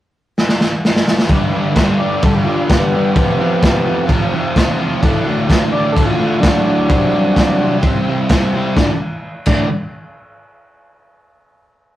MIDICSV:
0, 0, Header, 1, 5, 480
1, 0, Start_track
1, 0, Tempo, 467290
1, 1343, Time_signature, 4, 2, 24, 8
1, 12288, End_track
2, 0, Start_track
2, 0, Title_t, "Transistor combo organ"
2, 0, Program_c, 0, 18
2, 1291, Note_on_c, 0, 71, 114
2, 1304, Note_on_c, 0, 67, 98
2, 1305, Note_on_c, 0, 62, 116
2, 1479, Note_off_c, 0, 71, 0
2, 1486, Note_off_c, 0, 62, 0
2, 1486, Note_off_c, 0, 67, 0
2, 1551, Note_on_c, 0, 67, 71
2, 1554, Note_on_c, 0, 62, 90
2, 1563, Note_on_c, 0, 71, 90
2, 1729, Note_off_c, 0, 67, 0
2, 1731, Note_off_c, 0, 62, 0
2, 1735, Note_off_c, 0, 71, 0
2, 1796, Note_on_c, 0, 62, 92
2, 1801, Note_on_c, 0, 67, 86
2, 1816, Note_on_c, 0, 71, 103
2, 1971, Note_off_c, 0, 62, 0
2, 1974, Note_off_c, 0, 67, 0
2, 1982, Note_off_c, 0, 71, 0
2, 2030, Note_on_c, 0, 62, 68
2, 2039, Note_on_c, 0, 67, 69
2, 2040, Note_on_c, 0, 71, 71
2, 2208, Note_off_c, 0, 62, 0
2, 2213, Note_off_c, 0, 67, 0
2, 2213, Note_off_c, 0, 71, 0
2, 2272, Note_on_c, 0, 62, 93
2, 2284, Note_on_c, 0, 67, 86
2, 2288, Note_on_c, 0, 71, 110
2, 2449, Note_off_c, 0, 62, 0
2, 2455, Note_off_c, 0, 67, 0
2, 2457, Note_off_c, 0, 71, 0
2, 2528, Note_on_c, 0, 67, 71
2, 2531, Note_on_c, 0, 62, 77
2, 2533, Note_on_c, 0, 74, 81
2, 2697, Note_off_c, 0, 67, 0
2, 2698, Note_off_c, 0, 62, 0
2, 2699, Note_off_c, 0, 74, 0
2, 2767, Note_on_c, 0, 67, 67
2, 2771, Note_on_c, 0, 62, 72
2, 2771, Note_on_c, 0, 71, 78
2, 2936, Note_off_c, 0, 67, 0
2, 2938, Note_off_c, 0, 62, 0
2, 2938, Note_off_c, 0, 71, 0
2, 3042, Note_on_c, 0, 62, 76
2, 3049, Note_on_c, 0, 67, 68
2, 3052, Note_on_c, 0, 71, 82
2, 3193, Note_off_c, 0, 62, 0
2, 3197, Note_off_c, 0, 67, 0
2, 3198, Note_off_c, 0, 71, 0
2, 3234, Note_on_c, 0, 60, 102
2, 3246, Note_on_c, 0, 65, 81
2, 3248, Note_on_c, 0, 69, 107
2, 3409, Note_off_c, 0, 60, 0
2, 3415, Note_off_c, 0, 65, 0
2, 3415, Note_off_c, 0, 69, 0
2, 3480, Note_on_c, 0, 60, 89
2, 3482, Note_on_c, 0, 65, 80
2, 3488, Note_on_c, 0, 69, 95
2, 3651, Note_off_c, 0, 60, 0
2, 3652, Note_off_c, 0, 65, 0
2, 3655, Note_off_c, 0, 69, 0
2, 3706, Note_on_c, 0, 69, 105
2, 3707, Note_on_c, 0, 65, 81
2, 3710, Note_on_c, 0, 60, 97
2, 3884, Note_off_c, 0, 65, 0
2, 3884, Note_off_c, 0, 69, 0
2, 3886, Note_off_c, 0, 60, 0
2, 3931, Note_on_c, 0, 60, 83
2, 3943, Note_on_c, 0, 65, 78
2, 3962, Note_on_c, 0, 69, 91
2, 4116, Note_off_c, 0, 60, 0
2, 4122, Note_off_c, 0, 65, 0
2, 4131, Note_off_c, 0, 69, 0
2, 4162, Note_on_c, 0, 60, 113
2, 4169, Note_on_c, 0, 65, 102
2, 4175, Note_on_c, 0, 69, 122
2, 4351, Note_off_c, 0, 60, 0
2, 4354, Note_off_c, 0, 65, 0
2, 4357, Note_off_c, 0, 69, 0
2, 4432, Note_on_c, 0, 60, 96
2, 4438, Note_on_c, 0, 65, 86
2, 4443, Note_on_c, 0, 67, 102
2, 4605, Note_off_c, 0, 60, 0
2, 4608, Note_off_c, 0, 65, 0
2, 4611, Note_off_c, 0, 67, 0
2, 4672, Note_on_c, 0, 60, 89
2, 4675, Note_on_c, 0, 65, 76
2, 4675, Note_on_c, 0, 69, 99
2, 4845, Note_off_c, 0, 60, 0
2, 4846, Note_off_c, 0, 65, 0
2, 4846, Note_off_c, 0, 69, 0
2, 4902, Note_on_c, 0, 60, 84
2, 4904, Note_on_c, 0, 65, 88
2, 4908, Note_on_c, 0, 69, 96
2, 5079, Note_off_c, 0, 60, 0
2, 5081, Note_off_c, 0, 65, 0
2, 5083, Note_off_c, 0, 69, 0
2, 5145, Note_on_c, 0, 66, 107
2, 5151, Note_on_c, 0, 62, 118
2, 5151, Note_on_c, 0, 69, 127
2, 5321, Note_off_c, 0, 66, 0
2, 5323, Note_off_c, 0, 62, 0
2, 5324, Note_off_c, 0, 69, 0
2, 5384, Note_on_c, 0, 66, 85
2, 5385, Note_on_c, 0, 69, 103
2, 5399, Note_on_c, 0, 62, 84
2, 5559, Note_off_c, 0, 66, 0
2, 5560, Note_off_c, 0, 69, 0
2, 5567, Note_off_c, 0, 62, 0
2, 5630, Note_on_c, 0, 62, 99
2, 5631, Note_on_c, 0, 66, 85
2, 5647, Note_on_c, 0, 69, 106
2, 5802, Note_off_c, 0, 62, 0
2, 5803, Note_off_c, 0, 66, 0
2, 5811, Note_off_c, 0, 69, 0
2, 5908, Note_on_c, 0, 62, 73
2, 5923, Note_on_c, 0, 66, 69
2, 5926, Note_on_c, 0, 69, 79
2, 6061, Note_off_c, 0, 62, 0
2, 6068, Note_off_c, 0, 66, 0
2, 6070, Note_off_c, 0, 69, 0
2, 6146, Note_on_c, 0, 66, 94
2, 6157, Note_on_c, 0, 69, 114
2, 6161, Note_on_c, 0, 62, 103
2, 6300, Note_off_c, 0, 66, 0
2, 6305, Note_off_c, 0, 69, 0
2, 6307, Note_off_c, 0, 62, 0
2, 6358, Note_on_c, 0, 69, 87
2, 6360, Note_on_c, 0, 66, 74
2, 6374, Note_on_c, 0, 62, 86
2, 6525, Note_off_c, 0, 69, 0
2, 6526, Note_off_c, 0, 66, 0
2, 6533, Note_off_c, 0, 62, 0
2, 6593, Note_on_c, 0, 62, 72
2, 6593, Note_on_c, 0, 69, 87
2, 6594, Note_on_c, 0, 66, 70
2, 6762, Note_off_c, 0, 62, 0
2, 6762, Note_off_c, 0, 69, 0
2, 6763, Note_off_c, 0, 66, 0
2, 6793, Note_on_c, 0, 66, 74
2, 6798, Note_on_c, 0, 62, 78
2, 6813, Note_on_c, 0, 69, 87
2, 6982, Note_off_c, 0, 66, 0
2, 6985, Note_off_c, 0, 62, 0
2, 6992, Note_off_c, 0, 69, 0
2, 7027, Note_on_c, 0, 64, 98
2, 7047, Note_on_c, 0, 67, 81
2, 7057, Note_on_c, 0, 72, 107
2, 7219, Note_off_c, 0, 64, 0
2, 7229, Note_off_c, 0, 67, 0
2, 7234, Note_off_c, 0, 72, 0
2, 7254, Note_on_c, 0, 64, 88
2, 7273, Note_on_c, 0, 67, 77
2, 7277, Note_on_c, 0, 72, 95
2, 7452, Note_off_c, 0, 64, 0
2, 7462, Note_off_c, 0, 67, 0
2, 7464, Note_off_c, 0, 72, 0
2, 7522, Note_on_c, 0, 64, 96
2, 7527, Note_on_c, 0, 67, 88
2, 7539, Note_on_c, 0, 72, 106
2, 7706, Note_off_c, 0, 64, 0
2, 7709, Note_off_c, 0, 67, 0
2, 7714, Note_off_c, 0, 72, 0
2, 7784, Note_on_c, 0, 67, 82
2, 7788, Note_on_c, 0, 64, 83
2, 7807, Note_on_c, 0, 72, 97
2, 7957, Note_off_c, 0, 67, 0
2, 7959, Note_off_c, 0, 64, 0
2, 7969, Note_off_c, 0, 72, 0
2, 8013, Note_on_c, 0, 64, 123
2, 8025, Note_on_c, 0, 67, 104
2, 8045, Note_on_c, 0, 72, 127
2, 8191, Note_off_c, 0, 64, 0
2, 8197, Note_off_c, 0, 67, 0
2, 8207, Note_off_c, 0, 72, 0
2, 8238, Note_on_c, 0, 64, 89
2, 8240, Note_on_c, 0, 72, 104
2, 8242, Note_on_c, 0, 67, 94
2, 8424, Note_off_c, 0, 64, 0
2, 8425, Note_off_c, 0, 72, 0
2, 8426, Note_off_c, 0, 67, 0
2, 8527, Note_on_c, 0, 67, 83
2, 8530, Note_on_c, 0, 64, 93
2, 8535, Note_on_c, 0, 72, 101
2, 8689, Note_off_c, 0, 67, 0
2, 8690, Note_off_c, 0, 64, 0
2, 8692, Note_off_c, 0, 72, 0
2, 8767, Note_on_c, 0, 64, 86
2, 8770, Note_on_c, 0, 67, 89
2, 8780, Note_on_c, 0, 72, 98
2, 8929, Note_off_c, 0, 64, 0
2, 8930, Note_off_c, 0, 67, 0
2, 8935, Note_off_c, 0, 72, 0
2, 8997, Note_on_c, 0, 69, 90
2, 9002, Note_on_c, 0, 62, 82
2, 9015, Note_on_c, 0, 66, 70
2, 9225, Note_off_c, 0, 69, 0
2, 9227, Note_off_c, 0, 62, 0
2, 9234, Note_off_c, 0, 66, 0
2, 12288, End_track
3, 0, Start_track
3, 0, Title_t, "Transistor combo organ"
3, 0, Program_c, 1, 18
3, 2046, Note_on_c, 1, 74, 90
3, 2286, Note_off_c, 1, 74, 0
3, 2303, Note_on_c, 1, 69, 91
3, 2413, Note_on_c, 1, 67, 90
3, 2414, Note_off_c, 1, 69, 0
3, 2511, Note_on_c, 1, 65, 81
3, 2528, Note_off_c, 1, 67, 0
3, 2758, Note_off_c, 1, 65, 0
3, 2764, Note_on_c, 1, 59, 93
3, 2774, Note_on_c, 1, 67, 104
3, 4167, Note_off_c, 1, 59, 0
3, 4172, Note_off_c, 1, 67, 0
3, 5879, Note_on_c, 1, 74, 94
3, 6084, Note_on_c, 1, 69, 97
3, 6116, Note_off_c, 1, 74, 0
3, 6217, Note_off_c, 1, 69, 0
3, 6223, Note_on_c, 1, 65, 91
3, 6299, Note_off_c, 1, 65, 0
3, 6312, Note_on_c, 1, 65, 85
3, 6571, Note_off_c, 1, 65, 0
3, 6572, Note_on_c, 1, 54, 94
3, 6581, Note_on_c, 1, 62, 108
3, 7986, Note_off_c, 1, 54, 0
3, 7991, Note_off_c, 1, 62, 0
3, 9001, Note_on_c, 1, 62, 96
3, 9137, Note_off_c, 1, 62, 0
3, 9725, Note_on_c, 1, 62, 89
3, 9950, Note_off_c, 1, 62, 0
3, 12288, End_track
4, 0, Start_track
4, 0, Title_t, "Distorted electric guitar"
4, 0, Program_c, 2, 30
4, 1346, Note_on_c, 2, 43, 97
4, 1355, Note_on_c, 2, 50, 84
4, 1368, Note_on_c, 2, 55, 101
4, 1572, Note_off_c, 2, 43, 0
4, 1584, Note_off_c, 2, 50, 0
4, 1584, Note_on_c, 2, 43, 95
4, 1591, Note_off_c, 2, 55, 0
4, 1596, Note_on_c, 2, 50, 89
4, 1603, Note_on_c, 2, 55, 100
4, 1800, Note_off_c, 2, 43, 0
4, 1805, Note_off_c, 2, 50, 0
4, 1812, Note_on_c, 2, 43, 76
4, 1818, Note_on_c, 2, 50, 82
4, 1820, Note_off_c, 2, 55, 0
4, 1832, Note_on_c, 2, 55, 87
4, 2050, Note_off_c, 2, 43, 0
4, 2057, Note_off_c, 2, 50, 0
4, 2063, Note_on_c, 2, 43, 93
4, 2068, Note_off_c, 2, 55, 0
4, 2070, Note_on_c, 2, 50, 89
4, 2080, Note_on_c, 2, 55, 96
4, 2292, Note_off_c, 2, 43, 0
4, 2297, Note_off_c, 2, 50, 0
4, 2303, Note_off_c, 2, 55, 0
4, 2304, Note_on_c, 2, 43, 93
4, 2309, Note_on_c, 2, 50, 97
4, 2316, Note_on_c, 2, 55, 90
4, 2517, Note_off_c, 2, 43, 0
4, 2527, Note_off_c, 2, 50, 0
4, 2529, Note_on_c, 2, 43, 84
4, 2530, Note_off_c, 2, 55, 0
4, 2539, Note_on_c, 2, 50, 88
4, 2543, Note_on_c, 2, 55, 100
4, 2756, Note_off_c, 2, 43, 0
4, 2765, Note_off_c, 2, 50, 0
4, 2769, Note_on_c, 2, 43, 80
4, 2772, Note_off_c, 2, 55, 0
4, 2778, Note_on_c, 2, 50, 90
4, 2785, Note_on_c, 2, 55, 96
4, 3001, Note_off_c, 2, 43, 0
4, 3009, Note_off_c, 2, 50, 0
4, 3013, Note_on_c, 2, 43, 75
4, 3017, Note_off_c, 2, 55, 0
4, 3021, Note_on_c, 2, 50, 91
4, 3030, Note_on_c, 2, 55, 93
4, 3242, Note_off_c, 2, 43, 0
4, 3246, Note_off_c, 2, 50, 0
4, 3248, Note_on_c, 2, 41, 89
4, 3250, Note_off_c, 2, 55, 0
4, 3258, Note_on_c, 2, 48, 104
4, 3259, Note_on_c, 2, 53, 113
4, 3465, Note_off_c, 2, 41, 0
4, 3477, Note_off_c, 2, 48, 0
4, 3477, Note_on_c, 2, 41, 82
4, 3490, Note_off_c, 2, 53, 0
4, 3490, Note_on_c, 2, 48, 91
4, 3502, Note_on_c, 2, 53, 97
4, 3731, Note_off_c, 2, 41, 0
4, 3739, Note_off_c, 2, 48, 0
4, 3741, Note_off_c, 2, 53, 0
4, 3744, Note_on_c, 2, 41, 79
4, 3751, Note_on_c, 2, 48, 83
4, 3753, Note_on_c, 2, 53, 94
4, 3957, Note_off_c, 2, 41, 0
4, 3968, Note_off_c, 2, 48, 0
4, 3969, Note_on_c, 2, 41, 80
4, 3975, Note_off_c, 2, 53, 0
4, 3981, Note_on_c, 2, 48, 89
4, 3988, Note_on_c, 2, 53, 98
4, 4211, Note_off_c, 2, 41, 0
4, 4218, Note_off_c, 2, 48, 0
4, 4219, Note_off_c, 2, 53, 0
4, 4224, Note_on_c, 2, 41, 98
4, 4230, Note_on_c, 2, 48, 102
4, 4231, Note_on_c, 2, 53, 109
4, 4449, Note_off_c, 2, 41, 0
4, 4459, Note_off_c, 2, 48, 0
4, 4461, Note_on_c, 2, 41, 82
4, 4467, Note_off_c, 2, 53, 0
4, 4471, Note_on_c, 2, 48, 83
4, 4479, Note_on_c, 2, 53, 94
4, 4690, Note_off_c, 2, 41, 0
4, 4690, Note_off_c, 2, 48, 0
4, 4702, Note_on_c, 2, 41, 93
4, 4702, Note_on_c, 2, 48, 99
4, 4705, Note_off_c, 2, 53, 0
4, 4718, Note_on_c, 2, 53, 93
4, 4922, Note_off_c, 2, 41, 0
4, 4927, Note_off_c, 2, 48, 0
4, 4934, Note_on_c, 2, 41, 92
4, 4937, Note_off_c, 2, 53, 0
4, 4939, Note_on_c, 2, 48, 89
4, 4950, Note_on_c, 2, 53, 88
4, 5159, Note_off_c, 2, 41, 0
4, 5161, Note_off_c, 2, 48, 0
4, 5166, Note_off_c, 2, 53, 0
4, 5175, Note_on_c, 2, 38, 93
4, 5182, Note_on_c, 2, 45, 102
4, 5191, Note_on_c, 2, 50, 101
4, 5411, Note_off_c, 2, 38, 0
4, 5419, Note_off_c, 2, 45, 0
4, 5423, Note_off_c, 2, 50, 0
4, 5423, Note_on_c, 2, 38, 99
4, 5432, Note_on_c, 2, 45, 88
4, 5436, Note_on_c, 2, 50, 94
4, 5628, Note_off_c, 2, 38, 0
4, 5637, Note_off_c, 2, 45, 0
4, 5640, Note_on_c, 2, 38, 93
4, 5643, Note_off_c, 2, 50, 0
4, 5649, Note_on_c, 2, 45, 82
4, 5655, Note_on_c, 2, 50, 93
4, 5871, Note_off_c, 2, 38, 0
4, 5879, Note_off_c, 2, 45, 0
4, 5883, Note_on_c, 2, 38, 90
4, 5891, Note_on_c, 2, 45, 99
4, 5892, Note_off_c, 2, 50, 0
4, 5904, Note_on_c, 2, 50, 95
4, 6106, Note_off_c, 2, 38, 0
4, 6111, Note_off_c, 2, 45, 0
4, 6117, Note_off_c, 2, 50, 0
4, 6118, Note_on_c, 2, 38, 100
4, 6123, Note_on_c, 2, 45, 100
4, 6129, Note_on_c, 2, 50, 108
4, 6359, Note_off_c, 2, 38, 0
4, 6369, Note_off_c, 2, 45, 0
4, 6371, Note_on_c, 2, 38, 90
4, 6372, Note_off_c, 2, 50, 0
4, 6381, Note_on_c, 2, 45, 91
4, 6384, Note_on_c, 2, 50, 93
4, 6592, Note_off_c, 2, 38, 0
4, 6597, Note_off_c, 2, 45, 0
4, 6603, Note_off_c, 2, 50, 0
4, 6604, Note_on_c, 2, 38, 91
4, 6609, Note_on_c, 2, 45, 104
4, 6615, Note_on_c, 2, 50, 104
4, 6831, Note_off_c, 2, 38, 0
4, 6844, Note_off_c, 2, 45, 0
4, 6844, Note_on_c, 2, 38, 81
4, 6849, Note_off_c, 2, 50, 0
4, 6856, Note_on_c, 2, 45, 91
4, 6861, Note_on_c, 2, 50, 99
4, 7071, Note_off_c, 2, 38, 0
4, 7077, Note_off_c, 2, 45, 0
4, 7079, Note_off_c, 2, 50, 0
4, 7091, Note_on_c, 2, 48, 98
4, 7101, Note_on_c, 2, 55, 92
4, 7105, Note_on_c, 2, 60, 98
4, 7334, Note_off_c, 2, 48, 0
4, 7334, Note_off_c, 2, 55, 0
4, 7340, Note_off_c, 2, 60, 0
4, 7346, Note_on_c, 2, 48, 86
4, 7346, Note_on_c, 2, 55, 96
4, 7353, Note_on_c, 2, 60, 101
4, 7572, Note_off_c, 2, 48, 0
4, 7581, Note_off_c, 2, 55, 0
4, 7584, Note_off_c, 2, 60, 0
4, 7584, Note_on_c, 2, 48, 73
4, 7594, Note_on_c, 2, 55, 90
4, 7596, Note_on_c, 2, 60, 86
4, 7806, Note_off_c, 2, 48, 0
4, 7817, Note_off_c, 2, 55, 0
4, 7818, Note_on_c, 2, 48, 98
4, 7827, Note_off_c, 2, 60, 0
4, 7829, Note_on_c, 2, 55, 94
4, 7839, Note_on_c, 2, 60, 94
4, 8046, Note_off_c, 2, 48, 0
4, 8049, Note_off_c, 2, 55, 0
4, 8058, Note_on_c, 2, 48, 102
4, 8060, Note_off_c, 2, 60, 0
4, 8061, Note_on_c, 2, 55, 102
4, 8073, Note_on_c, 2, 60, 109
4, 8287, Note_off_c, 2, 48, 0
4, 8300, Note_on_c, 2, 48, 93
4, 8303, Note_off_c, 2, 55, 0
4, 8307, Note_off_c, 2, 60, 0
4, 8315, Note_on_c, 2, 55, 90
4, 8319, Note_on_c, 2, 60, 95
4, 8528, Note_off_c, 2, 48, 0
4, 8534, Note_off_c, 2, 55, 0
4, 8541, Note_on_c, 2, 48, 93
4, 8547, Note_on_c, 2, 55, 106
4, 8548, Note_off_c, 2, 60, 0
4, 8561, Note_on_c, 2, 60, 90
4, 8756, Note_off_c, 2, 48, 0
4, 8768, Note_on_c, 2, 48, 90
4, 8769, Note_off_c, 2, 55, 0
4, 8774, Note_off_c, 2, 60, 0
4, 8782, Note_on_c, 2, 55, 98
4, 8786, Note_on_c, 2, 60, 96
4, 8993, Note_off_c, 2, 48, 0
4, 9000, Note_off_c, 2, 55, 0
4, 9002, Note_off_c, 2, 60, 0
4, 9009, Note_on_c, 2, 38, 85
4, 9020, Note_on_c, 2, 45, 104
4, 9024, Note_on_c, 2, 50, 102
4, 9152, Note_off_c, 2, 38, 0
4, 9157, Note_off_c, 2, 45, 0
4, 9159, Note_off_c, 2, 50, 0
4, 9737, Note_on_c, 2, 38, 101
4, 9747, Note_on_c, 2, 45, 116
4, 9755, Note_on_c, 2, 50, 117
4, 9925, Note_off_c, 2, 38, 0
4, 9930, Note_off_c, 2, 45, 0
4, 9934, Note_off_c, 2, 50, 0
4, 12288, End_track
5, 0, Start_track
5, 0, Title_t, "Drums"
5, 389, Note_on_c, 9, 38, 72
5, 492, Note_off_c, 9, 38, 0
5, 502, Note_on_c, 9, 38, 72
5, 605, Note_off_c, 9, 38, 0
5, 623, Note_on_c, 9, 38, 85
5, 726, Note_off_c, 9, 38, 0
5, 873, Note_on_c, 9, 38, 91
5, 975, Note_off_c, 9, 38, 0
5, 990, Note_on_c, 9, 38, 95
5, 1093, Note_off_c, 9, 38, 0
5, 1105, Note_on_c, 9, 38, 99
5, 1207, Note_off_c, 9, 38, 0
5, 1217, Note_on_c, 9, 38, 97
5, 1319, Note_off_c, 9, 38, 0
5, 1322, Note_on_c, 9, 49, 61
5, 1329, Note_on_c, 9, 36, 108
5, 1425, Note_off_c, 9, 49, 0
5, 1432, Note_off_c, 9, 36, 0
5, 1804, Note_on_c, 9, 49, 60
5, 1810, Note_on_c, 9, 36, 110
5, 1817, Note_on_c, 9, 38, 100
5, 1906, Note_off_c, 9, 49, 0
5, 1913, Note_off_c, 9, 36, 0
5, 1920, Note_off_c, 9, 38, 0
5, 2285, Note_on_c, 9, 49, 61
5, 2290, Note_on_c, 9, 36, 117
5, 2388, Note_off_c, 9, 49, 0
5, 2393, Note_off_c, 9, 36, 0
5, 2767, Note_on_c, 9, 49, 64
5, 2770, Note_on_c, 9, 36, 118
5, 2781, Note_on_c, 9, 38, 111
5, 2870, Note_off_c, 9, 49, 0
5, 2873, Note_off_c, 9, 36, 0
5, 2884, Note_off_c, 9, 38, 0
5, 3242, Note_on_c, 9, 49, 59
5, 3245, Note_on_c, 9, 36, 122
5, 3345, Note_off_c, 9, 49, 0
5, 3348, Note_off_c, 9, 36, 0
5, 3723, Note_on_c, 9, 49, 57
5, 3726, Note_on_c, 9, 36, 114
5, 3737, Note_on_c, 9, 38, 104
5, 3826, Note_off_c, 9, 49, 0
5, 3828, Note_off_c, 9, 36, 0
5, 3840, Note_off_c, 9, 38, 0
5, 4202, Note_on_c, 9, 36, 104
5, 4202, Note_on_c, 9, 49, 60
5, 4304, Note_off_c, 9, 36, 0
5, 4305, Note_off_c, 9, 49, 0
5, 4685, Note_on_c, 9, 36, 109
5, 4688, Note_on_c, 9, 49, 61
5, 4702, Note_on_c, 9, 38, 116
5, 4788, Note_off_c, 9, 36, 0
5, 4791, Note_off_c, 9, 49, 0
5, 4804, Note_off_c, 9, 38, 0
5, 5164, Note_on_c, 9, 36, 114
5, 5167, Note_on_c, 9, 49, 57
5, 5267, Note_off_c, 9, 36, 0
5, 5270, Note_off_c, 9, 49, 0
5, 5646, Note_on_c, 9, 36, 108
5, 5650, Note_on_c, 9, 49, 57
5, 5664, Note_on_c, 9, 38, 111
5, 5749, Note_off_c, 9, 36, 0
5, 5753, Note_off_c, 9, 49, 0
5, 5766, Note_off_c, 9, 38, 0
5, 6128, Note_on_c, 9, 36, 113
5, 6136, Note_on_c, 9, 49, 65
5, 6231, Note_off_c, 9, 36, 0
5, 6239, Note_off_c, 9, 49, 0
5, 6607, Note_on_c, 9, 36, 114
5, 6607, Note_on_c, 9, 49, 70
5, 6621, Note_on_c, 9, 38, 125
5, 6710, Note_off_c, 9, 36, 0
5, 6710, Note_off_c, 9, 49, 0
5, 6723, Note_off_c, 9, 38, 0
5, 7084, Note_on_c, 9, 36, 119
5, 7084, Note_on_c, 9, 49, 63
5, 7187, Note_off_c, 9, 36, 0
5, 7187, Note_off_c, 9, 49, 0
5, 7565, Note_on_c, 9, 36, 110
5, 7568, Note_on_c, 9, 49, 58
5, 7581, Note_on_c, 9, 38, 118
5, 7667, Note_off_c, 9, 36, 0
5, 7671, Note_off_c, 9, 49, 0
5, 7684, Note_off_c, 9, 38, 0
5, 8039, Note_on_c, 9, 49, 60
5, 8043, Note_on_c, 9, 36, 110
5, 8141, Note_off_c, 9, 49, 0
5, 8145, Note_off_c, 9, 36, 0
5, 8518, Note_on_c, 9, 49, 65
5, 8525, Note_on_c, 9, 36, 121
5, 8531, Note_on_c, 9, 38, 114
5, 8621, Note_off_c, 9, 49, 0
5, 8628, Note_off_c, 9, 36, 0
5, 8634, Note_off_c, 9, 38, 0
5, 9004, Note_on_c, 9, 36, 115
5, 9007, Note_on_c, 9, 38, 87
5, 9107, Note_off_c, 9, 36, 0
5, 9110, Note_off_c, 9, 38, 0
5, 9714, Note_on_c, 9, 57, 94
5, 9725, Note_on_c, 9, 36, 108
5, 9816, Note_off_c, 9, 57, 0
5, 9828, Note_off_c, 9, 36, 0
5, 12288, End_track
0, 0, End_of_file